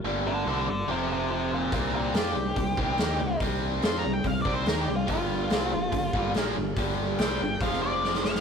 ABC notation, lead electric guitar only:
X:1
M:4/4
L:1/8
Q:1/4=143
K:Gm
V:1 name="Lead electric guitar"
z [Ad] [Ad] [Ad] [Gc] [Gc] [Gc] [FB] | [FB] [FB] G6 | z2 (3c' b g (3f d c (3B G F | F6 z2 |
z2 g2 f d2 f |]